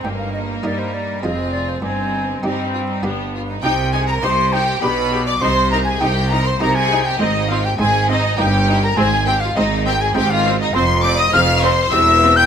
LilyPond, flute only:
\new Staff \with { instrumentName = "Flute" } { \time 3/4 \key c \minor \tempo 4 = 101 g''16 f''16 ees''8 d''16 c''16 d''8 ees''8 d''16 c''16 | aes''4 g''4. r8 | g''8 aes''16 bes''16 c'''8 g''8 b''8. d'''16 | c'''8 bes''16 aes''16 g''8 bes''16 c'''16 bes''16 aes''8 g''16 |
ees''8 f''16 g''16 aes''8 ees''8 g''8. bes''16 | aes''8 g''16 f''16 ees''8 g''16 aes''16 g''16 f''8 ees''16 | c'''8 d'''16 ees'''16 f'''8 c'''8 e'''8. g'''16 | }